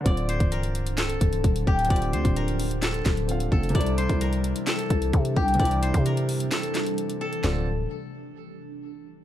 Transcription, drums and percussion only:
0.06 kick loud
0.06 closed hi-hat medium
0.17 closed hi-hat medium
0.29 closed hi-hat medium
0.40 kick medium
0.40 closed hi-hat medium
0.52 closed hi-hat medium
0.63 closed hi-hat medium
0.75 closed hi-hat medium
0.87 closed hi-hat medium
0.98 snare loud
0.98 clap loud
0.98 closed hi-hat medium
1.10 closed hi-hat medium
1.21 kick loud
1.21 closed hi-hat medium
1.33 closed hi-hat medium
1.44 kick loud
1.44 closed hi-hat medium
1.56 closed hi-hat medium
1.67 kick loud
1.79 closed hi-hat soft
1.85 closed hi-hat medium
1.90 kick loud
1.90 closed hi-hat medium
1.96 closed hi-hat medium
2.02 closed hi-hat medium
2.13 closed hi-hat medium
2.25 kick medium
2.25 closed hi-hat medium
2.36 closed hi-hat medium
2.48 closed hi-hat medium
2.60 closed hi-hat medium
2.60 open hi-hat medium
2.71 closed hi-hat medium
2.83 snare loud
2.83 clap medium
2.83 closed hi-hat medium
2.94 closed hi-hat medium
3.06 kick loud
3.06 snare medium
3.06 clap medium
3.06 closed hi-hat medium
3.17 closed hi-hat medium
3.29 closed hi-hat medium
3.40 closed hi-hat medium
3.52 kick loud
3.63 closed hi-hat soft
3.69 closed hi-hat medium
3.75 kick loud
3.75 closed hi-hat medium
3.81 closed hi-hat medium
3.86 closed hi-hat medium
3.98 closed hi-hat medium
4.09 kick medium
4.09 closed hi-hat medium
4.21 closed hi-hat medium
4.33 closed hi-hat medium
4.44 closed hi-hat medium
4.56 closed hi-hat medium
4.67 snare loud
4.67 clap medium
4.67 closed hi-hat medium
4.79 closed hi-hat medium
4.90 kick loud
4.90 closed hi-hat medium
5.02 closed hi-hat soft
5.13 kick loud
5.13 closed hi-hat medium
5.25 closed hi-hat medium
5.36 kick loud
5.48 closed hi-hat soft
5.54 closed hi-hat medium
5.60 kick loud
5.60 closed hi-hat medium
5.65 closed hi-hat medium
5.71 closed hi-hat medium
5.83 closed hi-hat medium
5.94 kick medium
5.94 closed hi-hat medium
6.06 closed hi-hat medium
6.17 closed hi-hat medium
6.29 closed hi-hat medium
6.29 open hi-hat medium
6.40 closed hi-hat medium
6.52 snare loud
6.52 clap medium
6.52 closed hi-hat medium
6.63 closed hi-hat medium
6.75 snare medium
6.75 clap medium
6.75 closed hi-hat medium
6.86 closed hi-hat medium
6.98 closed hi-hat medium
7.10 closed hi-hat medium
7.33 closed hi-hat soft
7.44 snare loud
7.44 clap medium
7.44 floor tom loud

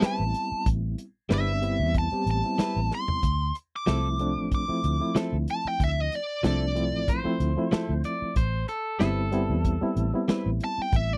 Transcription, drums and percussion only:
0.02 snare loud
0.02 closed hi-hat medium
0.34 closed hi-hat medium
0.66 kick loud
0.66 closed hi-hat medium
0.98 closed hi-hat medium
1.30 snare loud
1.30 closed hi-hat medium
1.62 closed hi-hat medium
1.94 kick medium
1.94 closed hi-hat medium
2.27 closed hi-hat medium
2.59 snare loud
2.59 closed hi-hat medium
2.91 snare soft
3.08 floor tom medium
3.23 kick loud
3.23 closed hi-hat medium
3.55 closed hi-hat medium
3.87 snare medium
3.87 closed hi-hat medium
4.19 closed hi-hat medium
4.52 kick medium
4.52 closed hi-hat medium
4.84 closed hi-hat medium
5.16 snare loud
5.16 closed hi-hat medium
5.48 closed hi-hat medium
5.80 kick loud
5.80 closed hi-hat medium
6.12 closed hi-hat medium
6.44 snare medium
6.44 closed hi-hat medium
6.76 closed hi-hat medium
7.08 kick medium
7.08 closed hi-hat medium
7.40 closed hi-hat medium
7.72 snare medium
7.72 closed hi-hat medium
8.04 closed hi-hat medium
8.36 kick loud
8.36 closed hi-hat medium
8.68 closed hi-hat medium
9.00 snare loud
9.00 closed hi-hat medium
9.32 closed hi-hat medium
9.64 kick medium
9.64 closed hi-hat medium
9.97 closed hi-hat medium
10.29 snare loud
10.29 closed hi-hat medium
10.60 closed hi-hat medium
10.92 kick loud
10.92 closed hi-hat medium

